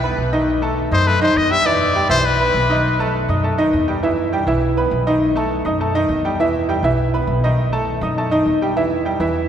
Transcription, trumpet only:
0.93 C5
1.07 B4
1.23 C5
1.37 D#5
1.51 E5
1.66 D5
2.10 C5
2.25 B4

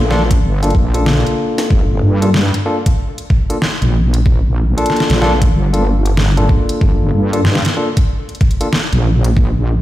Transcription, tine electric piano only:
0.11 A#3 D4 F4 A4
0.63 A#3 D4 F4 A4
0.94 A#3 D4 F4 A4
2.22 A#3 D4 F4 A4
2.66 A#3 D4 F4 A4
3.50 A#3 D4 F4 A4
4.77 A#3 D4 F4 A4
5.21 A#3 D4 F4 A4
5.73 A#3 D4 F4 A4
6.37 A#3 D4 F4 A4
7.33 A#3 D4 F4 A4
7.77 A#3 D4 F4 A4
8.61 A#3 D4 F4 A4

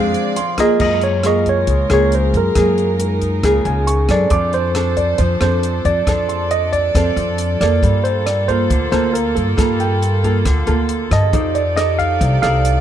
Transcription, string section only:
Already playing: C4 G#4 D5
0.80 G#3 F4 A#4
2.54 D#4
4.31 D4 A4 C5
6.07 D5
7.83 A#3 F4
11.33 D#4 G4 D5

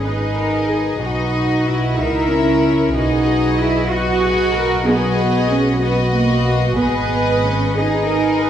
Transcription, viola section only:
0.06 B4
0.39 A#4
0.70 G#4
1.02 F#4
1.98 A#4
2.95 G#4
3.89 F#4
4.21 G#4
4.53 A#4
4.85 G#4
5.80 F#4
6.77 B4
7.76 G#4
8.08 A#4
8.42 B4

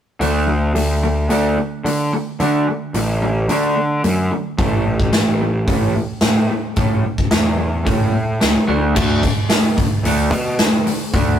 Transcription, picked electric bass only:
0.20 D2
0.74 D2
1.29 D2
1.84 D3
2.40 D3
2.94 A1
3.48 D3
4.04 F#2
4.58 A1
5.13 A1
5.67 A1
6.22 A2
6.77 A2
7.31 E2
7.86 A2
8.42 C#2
8.68 D2
8.96 D2
10.03 D2
10.31 B2
11.13 D2

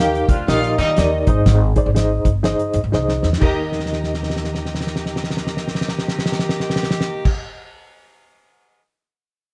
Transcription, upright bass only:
Already playing: D#2
0.29 D2
0.48 A#1
0.78 D#3
0.97 D#2
1.27 G#1
1.46 G#1
1.86 G#1
2.26 G1
2.74 G#1
2.84 G#1
2.93 C2
3.24 E2
3.42 D#2

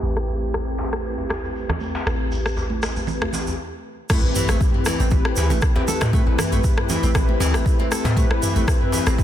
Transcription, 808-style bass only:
0.03 A1
2.06 A1
4.23 A1
4.48 A1
5.00 A1
5.37 D2
5.51 A1
6.02 A2
6.27 A1
6.52 A1
7.03 A1
7.40 D2
7.54 A1
8.05 A2
8.30 A1
8.56 A1
9.07 A1

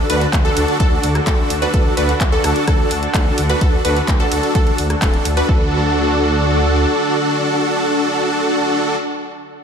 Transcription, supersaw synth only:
0.10 D4 F#4 B4
0.45 D4 F#4 A4
0.80 D4 F#4 A4
1.27 D4 F#4 A4
1.62 D4 F#4 B4
1.74 D4 F#4 A4
1.97 D4 F#4 B4
2.32 D4 F#4 A4
2.68 D4 F#4 A4
3.14 D4 F#4 A4
3.50 D4 F#4 B4
3.61 D4 F#4 A4
3.85 D4 F#4 B4
4.20 D4 F#4 A4
4.55 D4 F#4 A4
5.02 D4 F#4 A4
5.37 D4 F#4 B4
5.49 D4 F#4 A4

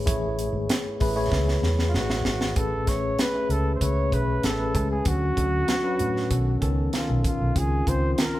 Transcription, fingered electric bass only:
0.07 A1
0.53 G#1
1.01 A1
1.32 C#2
1.62 E2
1.94 A1
2.25 G#1
2.56 A1
2.88 A1
3.49 C#2
3.81 C#2
4.12 B1
4.44 A1
4.75 C#2
5.06 D2
5.37 D2
6.00 A2
6.30 B1
6.61 C#2
7.10 B1
7.24 A1
7.41 B1
7.56 C#2
7.87 C#2

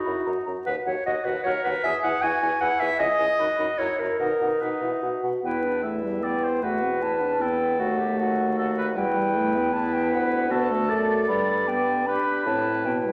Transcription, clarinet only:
Already playing: F#4
0.66 B4
0.86 C#5
1.06 D#5
1.25 B4
1.43 C#5
1.64 B4
1.84 E5
2.04 F#5
2.22 G#5
2.60 F#5
2.80 E5
2.99 D#5
3.78 C#5
3.99 A#4
4.19 A#4
4.61 B4
5.44 E4
5.64 D4
5.83 E4
6.62 F#4
7.02 E4
7.21 D4
7.40 E4
7.79 F#4
7.99 G4
8.19 F#4
8.97 E4
9.73 E4
10.50 F#4
10.89 A4
12.07 G4
12.47 E4
12.85 E4

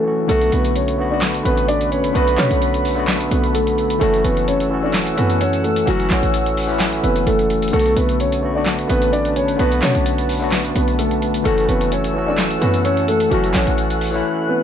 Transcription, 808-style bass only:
0.29 B1
0.52 B1
1.45 A1
2.15 B1
2.38 B2
2.50 B1
3.31 B1
4.01 F#1
4.24 F#1
5.17 F#2
5.87 F#1
6.11 A1
6.23 A1
7.03 F#1
7.27 F#1
7.73 B1
7.96 B1
8.90 A1
9.59 B1
9.83 B2
9.95 B1
10.76 B1
11.45 F#1
11.69 F#1
12.62 F#2
13.31 F#1
13.55 A1
13.67 A1

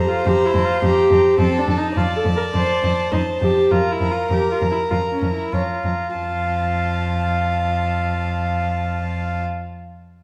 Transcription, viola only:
0.09 F4
0.27 G4
0.46 E4
0.65 F4
0.83 G4
1.40 C4
1.59 D4
1.78 D#4
1.97 F4
2.16 A4
2.37 A#4
2.55 C5
3.12 D#4
3.41 G4
3.71 F4
3.92 E4
4.12 F4
4.32 G4
4.52 F4
4.71 E4
4.90 F4
5.12 C#4
5.32 E4
5.53 F4
6.17 F4

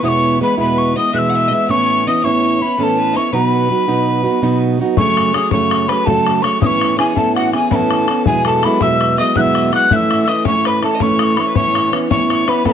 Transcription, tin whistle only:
0.04 D#6
0.08 C#6
0.43 B5
0.60 B5
0.78 C#6
0.97 D#6
1.15 F#6
1.19 E6
1.71 C#6
2.08 D#6
2.24 C#6
2.62 B5
2.79 B5
2.84 A5
3.17 C#6
3.34 A#5
3.46 B5
4.97 C#6
5.34 D#6
5.52 C#6
5.88 B5
6.05 A5
6.42 C#6
6.62 D#6
6.66 C#6
6.99 G#5
7.17 A5
7.35 F#5
7.54 G#5
7.71 A5 B5
8.27 G#5
8.47 A5
8.65 B5
8.82 E6
9.20 D#6
9.37 F#6
9.41 E6
9.75 F#6
9.92 E6 F#6
10.24 E6
10.29 D#6
10.47 C#6
10.67 B5
10.84 A5
11.02 C#6
11.19 D#6
11.24 C#6
11.36 B5
11.41 C#6
11.56 C#6
12.11 C#6
12.49 B5
12.67 B5

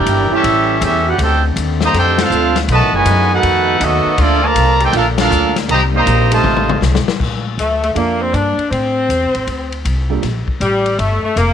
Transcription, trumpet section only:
Already playing: E4 A#4 D5 G5
0.33 C#4 G4 A4 E5
0.84 C#4 G4 A4 E5
1.08 D4 G4 B4 F#5
1.22 D#4 A4 C5 G5
1.84 G4 C5 D#5 A#5
1.98 D#4 A4 C5 G5
2.22 D4 A4 C5 F5
2.72 F#4 B4 D#5 A5
2.95 F#4 B4 D#5 G#5
3.33 D#4 A4 B4 F#5
3.82 B3 F#4 A4 D#5
4.20 A#3 F4 A4 D5
4.45 F4 D5 A5 A#5
4.83 D#4 A4 C5 G5
4.95 D4 A4 A#4 F5
5.20 D4 A4 A#4 F5
5.71 G4 C5 D#5 A#5
5.96 G4 C5 D#5 A#5
6.33 F4 C5 D#5 A5

